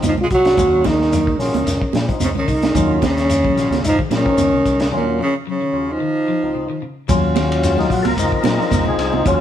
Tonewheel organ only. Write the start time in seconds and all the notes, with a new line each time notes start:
Already playing: F3 C4 D#4
0.57 F#3 C#4 F4
1.39 F#3 C#4 F4
2.08 F3 C4 D#4
2.75 F#3 C#4 F4
3.55 F#3 C#4 F4
4.25 F3 C4 D#4
4.91 D#2 F#3 C#4 F4
5.72 D#2 F#3 C#4 F4
6.43 C#2 F3 C4 D#4
7.09 F#3 C#4 F4
7.64 C#4
7.79 D#4
7.92 F#4
8.03 A4
8.07 A#4
8.18 F3 C4 D#4
8.88 G#4
9.15 D#4
9.27 F#3 C#4 F4